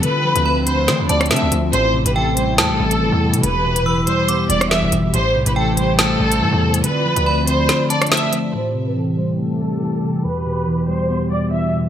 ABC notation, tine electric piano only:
X:1
M:4/4
L:1/8
Q:1/4=141
K:Am
V:1 name="Tine electric piano" clef=bass
D, F, A, C D C A, F, | A,, C, E, G, A, G, E, C, | E,, B,, E, G, B, G, E, B,, | A,, C, E, G, A, G, E, C, |
D, F, A, C D C A, F, | A,, C, E, G, A, G, E, C, | E,, B,, E, G, B, G, E, B,, |]